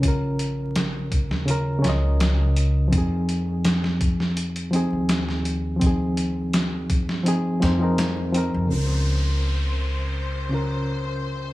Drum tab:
HH |x-x-x-x-x-x-x-x-|x-x-x-x-xxx-x-x-|x-x-x-x-x-x-x-x-|----------------|
SD |----o--o--o-o---|----oo-o----oo--|----o--o--o-o---|----------------|
BD |o-----o---------|o-----o---------|o-----o---------|----------------|